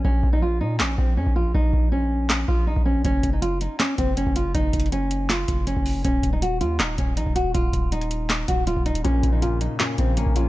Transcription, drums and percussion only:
0.05 kick loud
0.23 kick medium
0.80 snare loud
0.80 clap medium
0.98 kick loud
1.26 kick medium
1.55 kick loud
1.73 kick medium
2.30 snare loud
2.30 clap medium
2.48 kick loud
2.76 kick medium
3.05 kick loud
3.05 closed hi-hat medium
3.23 kick medium
3.23 closed hi-hat medium
3.42 closed hi-hat medium
3.61 closed hi-hat medium
3.80 snare loud
3.80 clap medium
3.80 closed hi-hat medium
3.98 kick loud
3.98 closed hi-hat medium
4.17 closed hi-hat medium
4.26 kick medium
4.36 closed hi-hat medium
4.55 kick loud
4.55 closed hi-hat medium
4.73 kick medium
4.73 closed hi-hat medium
4.80 closed hi-hat medium
4.86 closed hi-hat soft
4.92 closed hi-hat medium
5.11 closed hi-hat medium
5.30 snare loud
5.30 clap medium
5.30 closed hi-hat medium
5.48 kick loud
5.48 closed hi-hat medium
5.67 closed hi-hat medium
5.76 kick medium
5.86 open hi-hat medium
6.05 kick loud
6.05 closed hi-hat medium
6.23 kick loud
6.23 closed hi-hat medium
6.42 closed hi-hat medium
6.61 closed hi-hat medium
6.79 snare loud
6.79 clap medium
6.79 closed hi-hat medium
6.98 kick loud
6.98 closed hi-hat medium
7.17 closed hi-hat medium
7.26 kick medium
7.36 closed hi-hat medium
7.55 kick loud
7.55 closed hi-hat medium
7.73 kick medium
7.73 closed hi-hat medium
7.92 closed hi-hat medium
8.01 closed hi-hat soft
8.11 closed hi-hat medium
8.30 snare loud
8.30 clap medium
8.30 closed hi-hat medium
8.48 kick loud
8.48 closed hi-hat medium
8.67 closed hi-hat medium
8.76 kick medium
8.86 closed hi-hat soft
8.86 open hi-hat medium
8.95 closed hi-hat medium
9.05 kick loud
9.05 closed hi-hat medium
9.23 kick medium
9.23 closed hi-hat medium
9.42 closed hi-hat medium
9.61 closed hi-hat medium
9.80 snare loud
9.80 clap medium
9.80 closed hi-hat medium
9.98 kick loud
9.98 closed hi-hat medium
10.17 closed hi-hat medium
10.26 kick medium
10.36 closed hi-hat medium

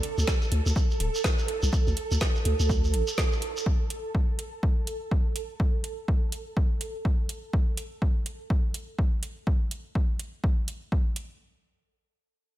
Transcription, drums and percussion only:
0.03 closed hi-hat medium
0.18 shekere medium
0.27 kick loud
0.27 snare medium
0.27 shekere medium
0.42 shekere soft
0.52 closed hi-hat medium
0.66 shekere medium
0.76 kick loud
0.76 shekere medium
0.91 shekere soft
1.00 closed hi-hat loud
1.15 shekere medium
1.24 kick loud
1.24 snare medium
1.24 shekere medium
1.39 shekere soft
1.48 closed hi-hat medium
1.63 shekere medium
1.73 kick loud
1.73 shekere medium
1.87 shekere soft
1.97 closed hi-hat medium
2.11 shekere medium
2.21 kick loud
2.21 snare medium
2.21 shekere medium
2.35 shekere soft
2.45 closed hi-hat medium
2.60 shekere medium
2.69 kick loud
2.69 shekere medium
2.84 shekere soft
2.94 closed hi-hat medium
3.07 shekere medium
3.18 kick loud
3.18 snare medium
3.18 shekere medium
3.32 shekere soft
3.42 closed hi-hat medium
3.57 shekere medium
3.66 kick loud
3.90 closed hi-hat medium
4.15 kick loud
4.39 closed hi-hat medium
4.63 kick loud
4.87 closed hi-hat medium
5.11 kick loud
5.36 closed hi-hat medium
5.60 kick loud
5.84 closed hi-hat medium
6.08 kick loud
6.32 closed hi-hat medium
6.57 kick loud
6.81 closed hi-hat medium
7.05 kick loud
7.29 closed hi-hat medium
7.53 kick loud
7.77 closed hi-hat medium
8.02 kick loud
8.26 closed hi-hat medium
8.50 kick loud
8.74 closed hi-hat medium
8.99 kick medium
9.23 closed hi-hat medium
9.47 kick loud
9.71 closed hi-hat medium
9.95 kick medium
10.19 closed hi-hat medium
10.44 kick loud
10.68 closed hi-hat medium
10.92 kick loud
11.16 closed hi-hat medium

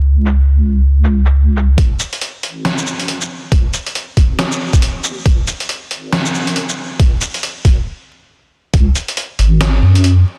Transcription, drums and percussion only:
0.26 shaker medium
1.04 shaker medium
1.26 shaker medium
1.56 shaker medium
1.78 kick loud
1.78 closed hi-hat medium
2.00 closed hi-hat medium
2.00 shaker medium
2.13 closed hi-hat medium
2.21 closed hi-hat medium
2.43 closed hi-hat medium
2.65 snare loud
2.65 closed hi-hat medium
2.78 shaker medium
2.87 shaker medium
3.00 closed hi-hat medium
3.08 closed hi-hat medium
3.21 shaker medium
3.52 kick loud
3.52 closed hi-hat medium
3.73 closed hi-hat medium
3.73 shaker medium
3.86 closed hi-hat medium
3.95 closed hi-hat medium
4.17 kick medium
4.17 closed hi-hat medium
4.39 snare loud
4.39 closed hi-hat medium
4.52 shaker medium
4.73 kick medium
4.73 closed hi-hat medium
4.73 shaker medium
4.82 closed hi-hat medium
5.04 shaker medium
5.26 kick loud
5.26 closed hi-hat medium
5.47 closed hi-hat medium
5.47 shaker medium
5.60 closed hi-hat medium
5.69 closed hi-hat medium
5.91 closed hi-hat medium
6.13 snare loud
6.13 closed hi-hat medium
6.25 shaker medium
6.34 shaker soft
6.47 closed hi-hat medium
6.56 closed hi-hat medium
6.69 shaker medium
7.00 kick loud
7.00 closed hi-hat medium
7.21 closed hi-hat medium
7.21 shaker medium
7.34 closed hi-hat medium
7.43 closed hi-hat medium
7.65 kick medium
7.65 closed hi-hat medium
8.74 kick loud
8.74 closed hi-hat medium
8.95 closed hi-hat medium
8.95 shaker medium
9.08 closed hi-hat medium
9.17 closed hi-hat medium
9.39 closed hi-hat medium
9.61 snare loud
9.61 closed hi-hat medium
9.95 closed hi-hat medium
10.04 closed hi-hat medium

